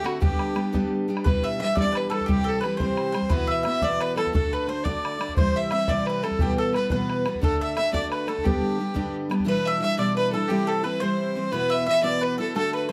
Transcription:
0.03 D3 A3 C4 F#4, bodhran
0.20 G2 D3 G3 B3 D4 G4, bodhran
0.39 bodhran
0.55 G3 B3 D4 G4, bodhran
0.72 G2 D3 G3 B3 D4 G4, bodhran
1.08 G3 B3 D4 G4
1.17 bodhran
1.24 E2 B2 E3 G3 D4 G4 B4, bodhran
1.44 E5
1.59 E3 G3 D4 G4 E5
1.75 E2 B2 E3 G3 D4 G4 D5, bodhran
1.80 D5
1.92 B4, bodhran
1.97 B4
2.09 E3 G3 D4 G4 A4 B4, bodhran
2.21 bodhran
2.26 C3 E3 G3 C4 G4, bodhran
2.44 A4, bodhran
2.48 A4
2.61 E3 G3 B4, bodhran
2.65 C4 G4
2.77 C3 E3 G3 C4 G4 C5, bodhran
2.82 C5
2.97 bodhran
3.12 E3 G3 C4 G4 C5, bodhran
3.22 bodhran
3.30 E2 B2 E3 B3 E4 F#4 B4, bodhran
3.47 E5, bodhran
3.63 E3 B3 E4 E5, bodhran
3.68 F#4
3.81 E2 B2 E3 B3 E4 F#4 D5, bodhran
4.01 B4, bodhran
4.16 E3 B3 E4 F#4 A4, bodhran
4.26 bodhran
4.33 D3 A3 D4 F#4 A4, bodhran
4.53 B4, bodhran
4.67 D3 A3 D4 F#4 C5
4.83 D3 A3 D4 F#4 D5, bodhran
5.05 bodhran
5.19 D3 A3 D4 F#4, bodhran
5.29 bodhran
5.36 C3 E3 G3 C4 E4 C5, bodhran
5.56 E5
5.71 E3 G3 C4 E4 E5, bodhran
5.88 C3 E3 G3 C4 E4 D5, bodhran
6.06 B4, bodhran
6.23 E3 G3 C4 E4 A4, bodhran
6.31 bodhran
6.39 E2 B2 E3 G3 B3 F#4 G4, bodhran
6.58 A4, bodhran
6.74 E3 G3 B3 F#4 B4, bodhran
6.90 E2 B2 E3 G3 B3 F#4 B4, bodhran
7.10 bodhran
7.25 E3 G3 B3 F#4, bodhran
7.35 bodhran
7.42 D3 A3 D4 F#4 A4, bodhran
7.61 E5, bodhran
7.76 D3 A3 D4 F#4 E5, bodhran
7.92 D3 A3 D4 F#4 D5, bodhran
8.11 B4, bodhran
8.27 D3 A3 D4 F#4 A4, bodhran
8.38 bodhran
8.44 G2 D3 G3 B3 D4 G4, bodhran
8.78 G3 B3 D4 G4
8.94 G2 D3 G3 B3 D4 G4, bodhran
9.30 G3 B3 D4 G4, bodhran
9.40 bodhran
9.44 E2 B2 E3 G3 D4 E4 B4
9.65 E5
9.80 E3 G3 D4 E4 E5
9.84 E5
9.97 E2 B2 E3 G3 D4 E4 D5
10.16 B4
10.32 E3 G3 D4 E4 A4
10.48 C3 E3 G3 C4 E4 G4
10.67 A4
10.83 E3 G3 C4 E4 B4
11.00 C3 E3 G3 C4 E4 C5
11.35 E3 G3 C4 E4
11.51 E2 B2 E3 B3 E4 F#4 B4
11.70 E5
11.86 E3 B3 E4 F#4 E5
12.02 E2 B2 E3 B3 E4 F#4 D5
12.21 B4
12.38 E3 B3 E4 F#4 A4
12.55 D3 A3 D4 F#4 A4
12.73 B4
12.89 D3 C5

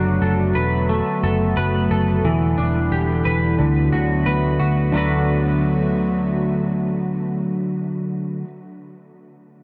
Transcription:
Already playing: F#1 D3 F#3 A3 B3 D4 F#4 B4
0.22 F#1 A4
0.55 E1 B4
0.89 A3
1.23 F#1 A4
1.57 F#1 B4
1.90 F#1 A4
2.24 E1 E3 G3 E4
2.58 E1 D4
2.91 E1 G4
3.25 E1 B4
3.59 D2 D3 F#3 A3 B3 F#4
3.92 D2 F#4
4.26 D2 B4
4.59 D2 F#4
4.92 D2 D3 F#3 A3 B3 D4 F#4
4.96 F#4 B4

